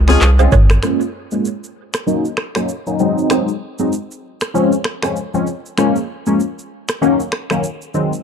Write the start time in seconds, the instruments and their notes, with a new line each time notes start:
Already playing: analog synth bass C#2
0.08 horn section F3 C#4 G#4, synth keys G#3 C4 C#4 F4, finger snap, cross-stick, low bongo, shaker
0.21 analog synth bass C2, clap, high bongo, shaker
0.39 synth keys G#3 C4 C#4 F4, balafon G#4 C5, shaker
0.52 analog synth bass G#1, balafon A#4 C#5, kick, mid tom, shaker
0.70 finger snap, cross-stick, shaker
0.83 synth keys G#3 A#3 C#4 F4, finger snap, cross-stick, shaker
1.01 shaker
1.31 synth keys G#3 A#3 C#4 F4, shaker
1.45 shaker
1.64 shaker
1.93 finger snap, cross-stick, shaker
2.07 synth keys F#3 A#3 C#4 D#4, shaker
2.25 shaker
2.37 finger snap, cross-stick
2.55 synth keys F#3 A#3 C#4 D#4, finger snap, cross-stick, shaker
2.69 shaker
2.87 synth keys F#3 A#3 C#4 D#4, shaker
2.99 synth keys F#3 G#3 C4 D#4, shaker
3.18 shaker
3.30 synth keys F#3 G#3 C4 D#4, finger snap, cross-stick, shaker
3.48 shaker
3.79 synth keys F#3 G#3 C4 D#4, shaker
3.93 shaker
4.11 shaker
4.41 finger snap, cross-stick, shaker
4.54 synth keys F3 G#3 C4 C#4, shaker
4.72 shaker
4.84 finger snap, cross-stick
5.03 synth keys F3 G#3 C4 C#4, finger snap, cross-stick, shaker
5.16 shaker
5.34 synth keys F3 G#3 C4 C#4, shaker
5.47 shaker
5.66 shaker
5.78 synth keys F3 G#3 A#3 C#4, finger snap, cross-stick, shaker
5.96 shaker
6.26 synth keys F3 G#3 A#3 C#4, shaker
6.40 shaker
6.59 shaker
6.88 finger snap, cross-stick, shaker
7.01 synth keys D#3 F#3 A#3 C#4, shaker
7.20 shaker
7.32 finger snap, cross-stick
7.50 synth keys D#3 F#3 A#3 C#4, finger snap, cross-stick, shaker
7.64 shaker
7.82 shaker
7.94 synth keys D#3 F#3 G#3 C4, shaker
8.13 shaker